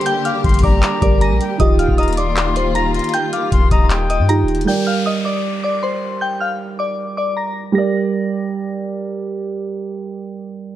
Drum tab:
HH |x-----------x-----------x--x--x--x--------------x-----------x-----------x-----------x-----------|x-----------x-----------x--x--x--x--x-----------x-----------x-----------x-----------x--x--x--x--|x-----------x-----------x-----------x-----------x-----------x-----------x-----------x---x---x---|------------------------------------------------------------------------------------------------|
CP |------------------------------------------------x-----------------------------------------------|------------------------------------------------x-----------------------------------------------|------------------------------------------------x-----------------------------------------------|------------------------------------------------------------------------------------------------|
BD |------------------------o-----------o-----------------------o-----------------------------------|o-----------------o-----------------------------------------------------------------------------|------------------------o-----------o-----------------------------------------------------------|------------------------------------------------------------------------------------------------|

HH |------------------------------------------------------------------------------------------------|------------------------------------------------------------------------------------------------|------------------------------------------------------------------------------------------------|
CP |------------------------------------------------------------------------------------------------|------------------------------------------------------------------------------------------------|------------------------------------------------------------------------------------------------|
BD |------------------------------------------------------------------------------------------------|------------------------------------------------------------------------------------------------|------------------------------------------------------------------------------------------------|